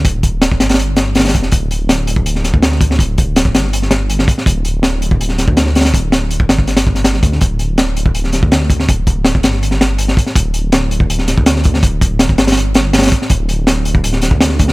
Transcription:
<<
  \new Staff \with { instrumentName = "Detuned saw bass" } { \clef bass \time 4/4 \key g \dorian \tempo 4 = 163 d,,4. g,,2 e,,8 | d,,2~ d,,8. d,4~ d,16 | d,,4. g,,2 r8 | d,,2~ d,,8. d,4~ d,16 |
d,,4. g,,2 d,8 | d,,2~ d,,8. d,4~ d,16 | d,,4. g,,2 r8 | d,,2~ d,,8. d,4~ d,16 |
d,,4. g,,2 r8 | d,,2~ d,,8. d,4~ d,16 | }
  \new DrumStaff \with { instrumentName = "Drums" } \drummode { \time 4/4 <hh bd>8 <hh bd>8 <hh sn>16 bd16 <hh sn>16 <hh sn>32 <hh sn>32 hh8 <hh sn>8 <hh sn>32 <hh sn>32 <hh sn>32 <hh sn>32 <hh bd>16 sn16 | <hh bd>8 hh8 <hh sn>8 hh16 bd16 hh16 sn16 <hh sn>16 bd16 <hh sn>16 sn16 <hh bd>16 sn16 | <hh bd>8 <hh bd>8 <hh sn>16 bd16 <hh sn>16 sn16 hh16 sn16 <hh sn>8 hh16 sn16 <hh bd>16 sn16 | <hh bd>8 hh8 <hh sn>8 hh16 bd16 hh16 sn16 <hh sn>16 bd16 <hh sn>16 sn16 <hh sn>32 <hh sn>32 <hh sn>16 |
<hh bd>8 <hh sn>8 hh16 bd16 <hh sn>16 bd16 <hh sn>16 <hh sn>16 bd16 <hh sn>16 <hh sn>16 sn16 <hh bd>16 sn16 | <hh bd>8 hh8 <hh sn>8 hh16 bd16 hh16 sn16 <hh sn>16 bd16 <hh sn>16 sn16 <hh bd>16 sn16 | <hh bd>8 <hh bd>8 <hh sn>16 bd16 <hh sn>16 sn16 hh16 sn16 <hh sn>8 hh16 sn16 <hh bd>16 sn16 | <hh bd>8 hh8 <hh sn>8 hh16 bd16 hh16 sn16 <hh sn>16 bd16 <hh sn>16 sn16 <hh bd>16 sn16 |
<hh bd>8 <hh bd>8 <hh sn>16 bd16 <hh sn>16 <hh sn>32 <hh sn>32 hh8 <hh sn>8 <hh sn>32 <hh sn>32 <hh sn>32 <hh sn>32 <hh bd>16 sn16 | <hh bd>8 hh8 <hh sn>8 hh16 bd16 hh16 sn16 <hh sn>16 bd16 <hh sn>16 sn16 <hh bd>16 sn16 | }
>>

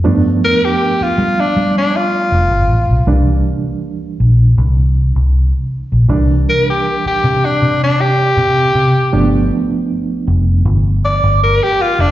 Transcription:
<<
  \new Staff \with { instrumentName = "Tenor saxophone" } { \time 4/4 \key c \major \tempo 4 = 79 r8 bes'16 g'8 f'8 d'8 d'16 f'4. | r1 | r8 bes'16 g'8 g'8 d'8 d'16 g'4.~ | g'8 r2 d''8 bes'16 g'16 f'16 d'16 | }
  \new Staff \with { instrumentName = "Reed electric piano" } { \time 4/4 \key c \major <f a b d'>1 | <e g bes d'>1 | <e g bes d'>1 | <f a b d'>1 | }
  \new Staff \with { instrumentName = "Fingered electric bass" } { \clef bass \time 4/4 \key c \major g,8 r4 g16 r16 g4 f,,16 g,,16 a,,16 b,,16 | c,8 r4 bes,,8 c,8. c,8 r8 bes,,16 | c,8 r4 c16 r16 c4 c8 c16 r16 | g,,8 r4 f,,8 g,,8. g,,8 r8 f,,16 | }
>>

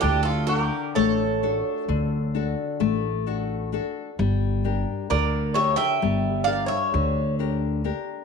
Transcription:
<<
  \new Staff \with { instrumentName = "Bouzouki" } { \time 9/8 \tempo 4. = 43 g'16 a'16 bes'8 cis''4. r2 | r4 d''8 e''16 g''8. f''16 e''8. r4 | }
  \new Staff \with { instrumentName = "Bouzouki" } { \time 9/8 d'16 f'16 g'8 a'4. r2 | r4 bes'8 cis''16 e''8. d''16 cis''8. r4 | }
  \new Staff \with { instrumentName = "Nylon-string guitar" } { \time 9/8 d8 <d' fis''>8 a8 <d' fis' a'>8 d8 <d' fis' a'>8 a8 <d' fis' a'>8 <d' fis' a'>8 | g8 <d' g' bes'>8 d8 <d' g' bes'>8 g8 <d' g' bes'>8 d8 <d' g' bes'>8 <d' g' bes'>8 | }
  \new Staff \with { instrumentName = "Upright bass" } { \clef bass \time 9/8 d,4 a,,4 d,4 a,,4. | g,,4 d,4 g,,4 d,4. | }
>>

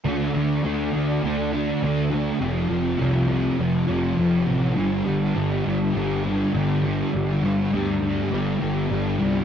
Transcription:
<<
  \new Staff \with { instrumentName = "Distorted electric guitar" } { \clef bass \time 4/4 \key d \mixolydian \tempo 4 = 102 <d a d'>8 <a d'>8 <d a d'>8 <a d'>8 <d a d'>8 <a d'>8 <d a d'>8 <a d'>8 | <f, c f>8 <c f>8 <f, c f>8 <c f>8 <f, c f>8 <c f>8 <f, c f>8 <c f>8 | <g, d g>8 <d g>8 <g, d g>8 <d g>8 <g, d g>8 <d g>8 <g, d g>8 <d g>8 | <g, d g>8 <d g>8 <g, d g>8 <d g>8 <g, d g>8 <d g>8 <g, d g>8 <d g>8 | }
  \new Staff \with { instrumentName = "Picked electric bass" } { \clef bass \time 4/4 \key d \mixolydian d,8 d,8 d,8 d,8 d,4 d,4 | f,,8 f,,8 c,4 f,,8 f,,8 f,,8 a,,8 | g,,8 g,,8 g,,8 g,,8 g,,4 g,,4 | g,,8 g,,8 d,4 g,,8 g,,8 g,,8 c,8 | }
>>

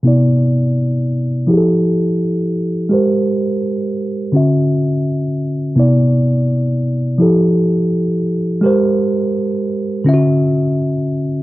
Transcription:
\new Staff \with { instrumentName = "Tine electric piano" } { \time 6/8 \key c \major \tempo 4. = 42 <c b e' d''>4. <f e' g' aes' a'>4. | <aes g' bes' c''>4. <d cis' fis' e''>4. | <c b e' d''>4. <f e' g' a'>4. | <aes g' bes' c''>4. <d cis' f' fis' e''>4. | }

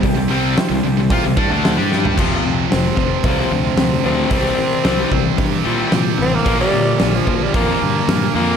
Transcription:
<<
  \new Staff \with { instrumentName = "Upright piano" } { \time 4/4 \key c \mixolydian \tempo 4 = 112 <e' g' c''>8 r8 <e' g' c''>4 <e' g' c''>4 <e' g' c''>4 | r1 | r1 | r1 | }
  \new Staff \with { instrumentName = "Tenor saxophone" } { \time 4/4 \key c \mixolydian r1 | r4 c'4 c'4 c'8 c'8~ | c'2~ c'8 r4 c'16 bes16~ | bes16 g4 f8 g16 bes4. bes8 | }
  \new Staff \with { instrumentName = "Distorted electric guitar" } { \clef bass \time 4/4 \key c \mixolydian <c g>16 <c g>16 <c g c'>8 r16 <c g>16 <c g>16 <c g>16 <bes f'>16 <c g>16 <g d'>16 <d a d'>8 <g d' g'>8. | <f, c f>4. <f, c f>2~ <f, c f>8 | <c g c'>4. <c g c'>2~ <c g c'>8 | <bes, f bes>4. <bes, f bes>2~ <bes, f bes>8 | }
  \new Staff \with { instrumentName = "Overdriven electric guitar" } { \clef bass \time 4/4 \key c \mixolydian <c g>16 <c g>16 <c g c'>8 r16 <c g>16 <c g>16 <c g>16 <bes f'>16 <c g>16 <g d'>16 <d a d'>8 <g d' g'>8. | <f, c f>8 <f, c>8 <f, c>8 <f, c>8 <f, c f>8 <f, c>8 <f, c>8 <f, c f>8 | <c e g>8 <c e>8 <c e g>8 <c e>8 <c e>8 <c e g>8 <c e>8 <c e>8 | <bes, d bes>8 <bes, d>8 <bes, d>8 <bes, d>8 <bes, d bes>8 <bes, d>8 <bes, d>8 <bes, d bes>8 | }
  \new Staff \with { instrumentName = "Picked electric bass" } { \clef bass \time 4/4 \key c \mixolydian c,16 c,16 c,8 r16 c,16 c,16 c,16 bes,16 c,16 g,16 d,8 g,8. | f,,8 f,8 f,,8 f,,8 c,8 d,8 d,8 d,8 | c,8 c8 c,8 c,8 g,8 bes,8 bes,8 a,,8 | bes,,8 bes,8 bes,,8 bes,,8 f,8 g,8 g,8 f,8 | }
  \new DrumStaff \with { instrumentName = "Drums" } \drummode { \time 4/4 <hho bd>4 <hho sn>4 <hho bd>8 bd8 <hho sn>8 sn16 tomfh16 | <cymc bd>4 <hho sn>8 <bd sn>8 <hho bd>4 <hho sn>4 | <hho bd>4 <hho sn>8 bd8 <hho bd>4 <hho sn>4 | <hho bd>4 <hho sn>8 bd8 <hho bd>4 <hho sn>4 | }
>>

